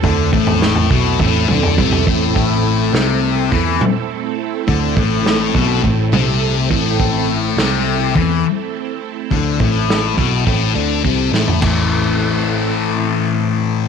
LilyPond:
<<
  \new Staff \with { instrumentName = "String machine" } { \time 4/4 \key a \minor \tempo 4 = 104 <a c' e' a'>1~ | <a c' e' a'>1~ | <a c' e' a'>1~ | <a c' e' a'>1~ |
<a c' e' a'>1 | <a c' e' a'>1 | }
  \new Staff \with { instrumentName = "Distorted electric guitar" } { \clef bass \time 4/4 \key a \minor d8 a,4 b,8 a,8 d8 c8 a,8 | a,4 c4 e8 r4. | d8 a,4 b,8 a,8 c4 a,8 | a,4 c4 e8 r4. |
d8 a,4 b,8 a,8 d8 c8 a,8 | <a, e a>1 | }
  \new Staff \with { instrumentName = "Picked electric bass" } { \clef bass \time 4/4 \key a \minor d,8 a,,4 b,,8 a,,8 d,8 c,8 a,,8 | a,,4 c,4 e,8 r4. | d,8 a,,4 b,,8 a,,8 c,4 a,,8 | a,,4 c,4 e,8 r4. |
d,8 a,,4 b,,8 a,,8 d,8 c,8 a,,8 | a,,1 | }
  \new DrumStaff \with { instrumentName = "Drums" } \drummode { \time 4/4 <bd tomfh>8 bd16 tomfh16 sn16 tomfh16 bd8 <bd tomfh>8 toml16 tomfh16 <bd toml>16 tomfh16 bd8 | bd4 sn4 bd8 toml8 r4 | bd8 bd8 sn8 bd8 bd8 toml8 r8 bd8 | bd4 sn4 bd4 r4 |
bd8 bd8 sn8 bd8 bd4 bd8 sn16 tomfh16 | <cymc bd tomfh>4 r4 r4 r4 | }
>>